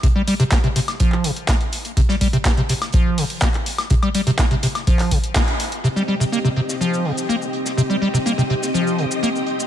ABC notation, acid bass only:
X:1
M:4/4
L:1/16
Q:1/4=124
K:Cm
V:1 name="Acid bass" clef=bass
C, G, G, C, B, C, C, z F,2 C, z B, z3 | C, G, G, C, B, C, C, z F,2 C, z B, z3 | C, G, G, C, B, C, C, z F,2 C, z B, z3 | C, G, G, C, B, C, C, z F,2 C, z B, z3 |
C, G, G, C, B, C, C, z F,2 C, z B, z3 |]